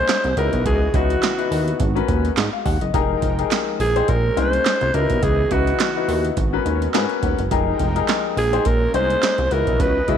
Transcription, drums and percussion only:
0.08 snare, clap, closed hi-hat
0.24 closed hi-hat
0.37 closed hi-hat
0.53 kick, closed hi-hat
0.66 kick, closed hi-hat
0.94 kick, closed hi-hat
1.10 closed hi-hat
1.23 snare, clap, closed hi-hat
1.39 closed hi-hat
1.52 open hi-hat
1.68 closed hi-hat
1.80 kick, closed hi-hat
1.97 closed hi-hat
2.08 kick, closed hi-hat
2.25 closed hi-hat
2.37 snare, clap, closed hi-hat
2.66 kick, open hi-hat
2.81 closed hi-hat
2.94 kick, closed hi-hat
3.22 kick, closed hi-hat
3.39 closed hi-hat
3.51 snare, clap, closed hi-hat
3.80 open hi-hat
3.96 closed hi-hat
4.08 kick, closed hi-hat
4.37 closed hi-hat
4.53 closed hi-hat
4.65 snare, clap, closed hi-hat
4.81 closed hi-hat
4.94 closed hi-hat
5.10 kick, closed hi-hat
5.23 kick, closed hi-hat
5.51 kick, closed hi-hat
5.67 closed hi-hat
5.80 snare, clap, closed hi-hat
6.09 open hi-hat
6.25 closed hi-hat
6.37 kick, closed hi-hat
6.66 closed hi-hat
6.82 closed hi-hat
6.94 snare, clap, closed hi-hat
7.10 closed hi-hat
7.23 kick, closed hi-hat
7.39 closed hi-hat
7.51 kick, closed hi-hat
7.79 kick, closed hi-hat
7.96 closed hi-hat
8.08 snare, clap, closed hi-hat
8.37 open hi-hat
8.53 closed hi-hat
8.65 kick, closed hi-hat
8.94 closed hi-hat
9.10 closed hi-hat
9.23 snare, clap, closed hi-hat
9.38 closed hi-hat
9.51 closed hi-hat
9.67 kick, closed hi-hat
9.80 kick, closed hi-hat
10.08 kick, closed hi-hat

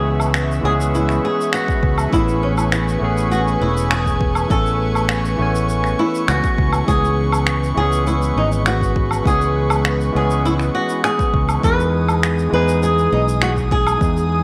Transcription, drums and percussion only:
0.20 low woodblock, shaker
0.34 finger snap, shaker
0.51 shaker
0.81 shaker
0.95 shaker
1.09 finger snap, shaker
1.41 shaker
1.53 finger snap, shaker
1.68 kick, shaker
1.83 kick
1.98 low woodblock, shaker
2.13 kick, shaker
2.28 shaker
2.58 low woodblock, shaker
2.72 finger snap, shaker
2.88 shaker
3.18 shaker
3.32 shaker
3.48 shaker
3.77 shaker
3.91 finger snap, shaker
4.06 kick, shaker
4.21 kick
4.35 low woodblock, shaker
4.50 kick, shaker
4.66 shaker
4.95 low woodblock, shaker
5.09 finger snap, shaker
5.25 shaker
5.55 shaker
5.69 shaker
5.84 finger snap, shaker
6.15 shaker
6.28 finger snap, shaker
6.44 kick, shaker
6.58 kick
6.73 low woodblock, shaker
6.88 kick, shaker
7.04 shaker
7.32 low woodblock, shaker
7.47 finger snap, shaker
7.64 shaker
7.92 shaker
8.07 shaker
8.22 shaker
8.52 shaker
8.66 finger snap, shaker
8.81 kick, shaker
8.96 kick
9.11 low woodblock, shaker
9.25 kick, shaker
9.41 shaker
9.70 low woodblock, shaker
9.85 finger snap, shaker
10.01 shaker
10.30 shaker
10.46 shaker
10.60 finger snap, shaker
10.89 shaker
11.04 finger snap, shaker
11.19 kick, shaker
11.34 kick
11.49 low woodblock, shaker
11.63 kick, shaker
11.80 shaker
12.08 low woodblock, shaker
12.23 finger snap, shaker
12.38 shaker
12.68 shaker
12.83 shaker
12.98 shaker
13.28 shaker
13.42 finger snap, shaker
13.57 kick, shaker
13.71 kick
13.87 low woodblock, shaker
14.01 kick, shaker
14.17 shaker

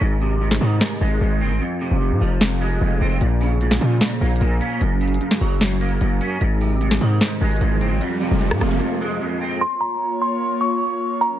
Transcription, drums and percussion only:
0.51 snare
0.81 snare
2.41 snare
3.21 closed hi-hat
3.41 open hi-hat
3.61 closed hi-hat
3.71 snare
3.81 closed hi-hat
4.01 snare, closed hi-hat
4.21 closed hi-hat
4.26 closed hi-hat
4.31 closed hi-hat
4.36 closed hi-hat
4.41 closed hi-hat
4.61 closed hi-hat
4.81 closed hi-hat
5.01 closed hi-hat
5.08 closed hi-hat
5.14 closed hi-hat
5.21 closed hi-hat
5.31 snare
5.41 closed hi-hat
5.61 snare, closed hi-hat
5.81 closed hi-hat
6.01 closed hi-hat
6.21 closed hi-hat
6.41 closed hi-hat
6.61 open hi-hat
6.81 closed hi-hat
6.91 snare
7.01 closed hi-hat
7.21 snare, closed hi-hat
7.41 closed hi-hat
7.46 closed hi-hat
7.51 closed hi-hat
7.56 closed hi-hat
7.61 closed hi-hat
7.81 closed hi-hat
8.01 closed hi-hat
8.21 open hi-hat
8.41 closed hi-hat
8.51 cross-stick
8.61 cross-stick, closed hi-hat
8.71 closed hi-hat

